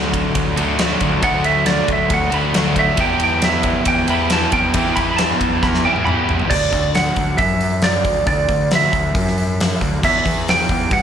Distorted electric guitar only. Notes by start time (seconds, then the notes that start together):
Already playing: D3 F#3 A3 D4 F#4
0.56 F#3 A3 D4 F#4
0.60 D3
0.78 D3 F#3 A3 D4 F#4
1.22 D3 F#3 A3 D4 F#4
2.30 D3 F#3 A3 D4 F#4
2.53 D3 F#3 A3 D4 F#4
2.96 E3 B3 E4 G4
4.08 E3 B3 E4 G4
4.30 E3 B3 E4 G4
4.74 E3 B3 E4 G4
5.85 B3 E4 G4
5.89 E3
6.06 E3 B3 E4
6.10 G4